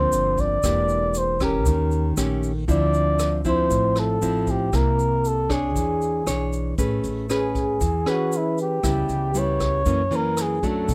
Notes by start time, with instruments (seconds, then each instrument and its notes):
Already playing: nylon-string guitar D3 F3 A#3 C4, flugelhorn C5
0.12 upright bass G1, closed hi-hat, shaker
0.38 flugelhorn D5, kick, closed hi-hat, shaker
0.63 upright bass E1, nylon-string guitar E3 A#3 D4 G4, kick, cross-stick, closed hi-hat, shaker
0.89 closed hi-hat, shaker
1.14 flugelhorn C5, closed hi-hat, shaker
1.40 nylon-string guitar C#4 G4, flugelhorn A#4, kick, cross-stick, closed hi-hat, shaker
1.66 upright bass D#2, nylon-string guitar D#3, kick, closed hi-hat, shaker
1.91 closed hi-hat, shaker
2.17 upright bass A#1, nylon-string guitar A3 C#4 G4, cross-stick, closed hi-hat, shaker
2.43 closed hi-hat, shaker
2.68 upright bass D2, nylon-string guitar D3 F3 C4 E4, flugelhorn D5, kick, closed hi-hat, shaker
2.94 closed hi-hat, shaker
3.19 cross-stick, closed hi-hat, shaker
3.45 nylon-string guitar F3 C4 E4, flugelhorn C5, kick, closed hi-hat, shaker
3.70 upright bass A1, nylon-string guitar A2, kick, closed hi-hat, shaker
3.96 flugelhorn A4, cross-stick, closed hi-hat, shaker
4.22 upright bass A1, nylon-string guitar F3 C4 E4, closed hi-hat, shaker
4.47 flugelhorn G4, kick, closed hi-hat, shaker
4.73 upright bass C2, nylon-string guitar C3 A#3 E4, flugelhorn A#4, kick, cross-stick, closed hi-hat, shaker
4.99 closed hi-hat, shaker
5.24 flugelhorn A4, closed hi-hat, shaker
5.49 nylon-string guitar D4 G#4 C#5, flugelhorn G#4, kick, cross-stick, closed hi-hat, shaker
5.76 upright bass E2, nylon-string guitar E3, kick, closed hi-hat, shaker
6.01 closed hi-hat, shaker
6.27 upright bass B1, nylon-string guitar D4 G#4 C#5, cross-stick, closed hi-hat, shaker
6.52 closed hi-hat, shaker
6.78 upright bass A1, nylon-string guitar A3 C#4 G#4 B4, kick, closed hi-hat, shaker
7.03 upright bass A1, closed hi-hat, shaker
7.30 nylon-string guitar C#4 G#4 B4, cross-stick, closed hi-hat, shaker
7.34 flugelhorn G#4
7.55 kick, closed hi-hat, shaker
7.81 upright bass E2, nylon-string guitar E3, kick, closed hi-hat, shaker
8.06 nylon-string guitar C#4 G#4 B4, flugelhorn F#4, cross-stick, closed hi-hat, shaker
8.32 closed hi-hat, shaker
8.37 flugelhorn E4
8.58 flugelhorn G4, closed hi-hat, shaker
8.83 upright bass C#2, nylon-string guitar C#3 G3 B3 E4, kick, cross-stick, closed hi-hat, shaker
9.09 upright bass C#2, closed hi-hat, shaker
9.35 nylon-string guitar G3 B3 E4, flugelhorn C#5, closed hi-hat, shaker
9.60 kick, cross-stick, closed hi-hat, shaker
9.85 nylon-string guitar F#2 E3 A#3 C#4, upright bass F#2, kick, closed hi-hat, shaker
10.11 nylon-string guitar E3 A#3 C#4, closed hi-hat, shaker
10.15 flugelhorn A#4
10.37 cross-stick, closed hi-hat, shaker
10.41 flugelhorn G#4
10.63 nylon-string guitar F#3 A3 D4, flugelhorn A4, kick, closed hi-hat, shaker
10.88 upright bass B1, nylon-string guitar B2, kick, closed hi-hat, shaker